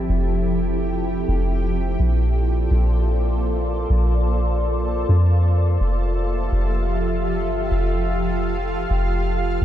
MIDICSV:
0, 0, Header, 1, 3, 480
1, 0, Start_track
1, 0, Key_signature, -1, "major"
1, 0, Tempo, 476190
1, 92, Time_signature, 4, 2, 24, 8
1, 9726, End_track
2, 0, Start_track
2, 0, Title_t, "Ambient pad"
2, 0, Program_c, 0, 92
2, 0, Note_on_c, 0, 53, 81
2, 0, Note_on_c, 0, 60, 78
2, 0, Note_on_c, 0, 64, 75
2, 0, Note_on_c, 0, 67, 77
2, 0, Note_on_c, 0, 69, 89
2, 1973, Note_off_c, 0, 60, 0
2, 1973, Note_off_c, 0, 64, 0
2, 1974, Note_off_c, 0, 53, 0
2, 1974, Note_off_c, 0, 67, 0
2, 2011, Note_on_c, 0, 58, 83
2, 2011, Note_on_c, 0, 72, 80
2, 2013, Note_on_c, 0, 65, 76
2, 2013, Note_on_c, 0, 74, 96
2, 5813, Note_off_c, 0, 58, 0
2, 5813, Note_off_c, 0, 72, 0
2, 5814, Note_off_c, 0, 74, 0
2, 5854, Note_on_c, 0, 67, 76
2, 5855, Note_on_c, 0, 53, 83
2, 5855, Note_on_c, 0, 76, 91
2, 7755, Note_off_c, 0, 76, 0
2, 7771, Note_on_c, 0, 77, 90
2, 9652, Note_off_c, 0, 69, 0
2, 9655, Note_off_c, 0, 53, 0
2, 9655, Note_off_c, 0, 67, 0
2, 9672, Note_off_c, 0, 77, 0
2, 9694, Note_on_c, 0, 72, 75
2, 9695, Note_on_c, 0, 58, 84
2, 9695, Note_on_c, 0, 69, 76
2, 9695, Note_on_c, 0, 74, 90
2, 9726, Note_off_c, 0, 58, 0
2, 9726, Note_off_c, 0, 65, 0
2, 9726, Note_off_c, 0, 69, 0
2, 9726, Note_off_c, 0, 72, 0
2, 9726, Note_off_c, 0, 74, 0
2, 9726, End_track
3, 0, Start_track
3, 0, Title_t, "808-style bass"
3, 0, Program_c, 1, 38
3, 93, Note_on_c, 1, 29, 102
3, 1252, Note_off_c, 1, 29, 0
3, 1293, Note_on_c, 1, 29, 111
3, 1984, Note_off_c, 1, 29, 0
3, 2011, Note_on_c, 1, 34, 111
3, 2703, Note_off_c, 1, 34, 0
3, 2730, Note_on_c, 1, 34, 100
3, 3890, Note_off_c, 1, 34, 0
3, 3930, Note_on_c, 1, 34, 108
3, 5091, Note_off_c, 1, 34, 0
3, 5131, Note_on_c, 1, 41, 107
3, 5823, Note_off_c, 1, 41, 0
3, 5852, Note_on_c, 1, 29, 111
3, 6543, Note_off_c, 1, 29, 0
3, 6574, Note_on_c, 1, 29, 106
3, 7534, Note_on_c, 1, 31, 101
3, 7549, Note_off_c, 1, 29, 0
3, 7761, Note_off_c, 1, 31, 0
3, 7773, Note_on_c, 1, 29, 103
3, 8932, Note_off_c, 1, 29, 0
3, 8974, Note_on_c, 1, 29, 111
3, 9664, Note_off_c, 1, 29, 0
3, 9693, Note_on_c, 1, 34, 110
3, 9726, Note_off_c, 1, 34, 0
3, 9726, End_track
0, 0, End_of_file